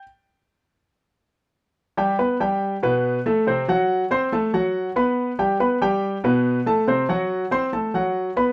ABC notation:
X:1
M:4/4
L:1/8
Q:1/4=141
K:G
V:1 name="Grand piano"
z8 | z [G,Gg] [B,Bb] [G,Gg]2 [B,,B,B]2 [A,Aa] | [C,Cc] [F,Ff]2 [Ccc'] [A,Aa] [F,Ff]2 [B,Bb]- | [B,Bb] [G,Gg] [B,Bb] [G,Gg]2 [B,,B,B]2 [A,Aa] |
[C,Cc] [F,Ff]2 [Ccc'] [A,Aa] [F,Ff]2 [B,Bb] |]